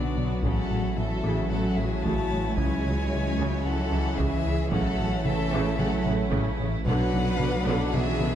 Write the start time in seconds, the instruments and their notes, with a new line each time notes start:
Already playing: sub bass B1, cello section D3, viola section F#3 B3, trombone section F#3 B3, ambient pad F#3 B3 F#4 D5, violin section D4 F#4, french horn section D4 F#4, violin D5
0.16 double bass section B1, analog synth bass B2, viola section F#3
0.43 double bass section A1, sub bass A1, analog synth bass A2, viola section C#3 F#3, trombone section E3 A3, cello section F#3, violin section C#4 E4 A4, french horn section C#4, ambient pad C#4 E4 C#5, violin F#5, taiko
0.70 double bass section A1, analog synth bass A2, viola section C#3
0.96 double bass section A1, analog synth bass A2, viola section C#3, cello section E3, violin section A4, violin E5
1.24 double bass section A1, analog synth bass A2, viola section C#3
1.50 double bass section A1, analog synth bass A2, viola section C#3, cello section F#3, violin section A4, violin F#5
1.77 double bass section A1, analog synth bass A2, viola section C#3, cello section E3, violin section G#4, violin E5
2.03 double bass section A1, analog synth bass A2, viola section C#3, cello section A3, violin section C#5, violin A5, taiko
2.31 double bass section A1, analog synth bass A2, viola section C#3
2.57 sub bass C#2, double bass section C#2, analog synth bass C#2, viola section C#3, ambient pad E3, cello section G#3, trombone section G#3, french horn section E4, violin section C#5, violin G#5, taiko
2.85 double bass section C#2, analog synth bass C#2, viola section C#3
3.11 double bass section C#2, analog synth bass C#2, viola section C#3
3.38 analog synth bass C#2, double bass section C#2, viola section C#3
3.64 analog synth bass C#2, double bass section C#2, viola section C#3 E3, cello section F#3, violin section A4, violin F#5
3.92 double bass section C#2, analog synth bass C#2, viola section C#3
4.18 double bass section C#2, analog synth bass C#2, viola section C#3, cello section E3, violin section G#4, violin E5, taiko
4.45 analog synth bass C#2, double bass section C#2, viola section C#3
4.70 sub bass A1, double bass section A1, analog synth bass A2, viola section C#3 A3, trombone section E3 A3, cello section F#3, ambient pad A3, violin section C#4 E4 A4, french horn section C#5, violin F#5, taiko
4.99 double bass section A1, analog synth bass A2, viola section C#3
5.24 double bass section A1, analog synth bass A2, viola section C#3, cello section E3, violin section A4, violin E5, taiko mid
5.52 double bass section A1, analog synth bass A2, viola section C#3
5.78 double bass section A1, analog synth bass A2, viola section C#3, cello section F#3, violin section A4, violin F#5, taiko mid
6.05 double bass section A1, analog synth bass A2, viola section C#3, taiko mid
6.32 double bass section A1, analog synth bass A2, viola section C#3, taiko
6.59 double bass section A1, analog synth bass A2, viola section C#3
6.86 sub bass B1, double bass section B1, trombone section B2 F#3, analog synth bass B2, viola section D3 F#3, ambient pad F#3 B3 D4 B4, cello section F#3, violin section B3 D4 B4, french horn section D4, violin F#5, taiko
7.13 double bass section B1, analog synth bass B2, viola section D3
7.40 double bass section B1, analog synth bass B2, viola section D3, taiko mid
7.67 double bass section B1, analog synth bass B2, viola section D3
7.93 double bass section B1, analog synth bass B2, viola section D3, cello section E3, french horn section B3, violin section G#4, violin E5, taiko mid
8.20 double bass section B1, analog synth bass B2, viola section D3, taiko mid